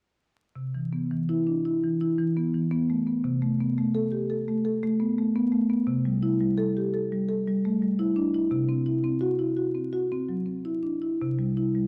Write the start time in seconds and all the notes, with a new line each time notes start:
0.56 C3
0.75 E3
0.93 B3
1.11 E3
1.29 E4
1.47 D4
1.65 E4
1.84 E3
2.01 E4
2.19 E3
2.37 B3
2.54 E3
2.71 B3
2.90 A3
3.07 B3
3.24 C3
3.42 A3
3.61 B3
3.78 A3
3.95 A4
4.12 G4
4.30 A4
4.48 A3
4.65 A4
4.83 A3
5.00 B3
5.18 A3
5.36 B3
5.52 A3
5.70 B3
5.87 C3
6.05 G3
6.23 E4
6.41 G3
6.58 A4
6.77 G4
6.94 A4
7.12 G3
7.29 A4
7.47 G3
7.65 A3
7.82 G3
7.99 E4
8.16 D4
8.34 E4
8.51 C3
8.69 C4
8.86 E4
9.04 C4
9.21 F#4
9.39 E4
9.57 F#4
9.75 C4
9.93 F#4
10.12 C4
10.29 F#3
10.46 C4
10.65 E4
10.83 D4
11.02 E4
11.22 C3
11.39 G3
11.57 E4
11.75 G3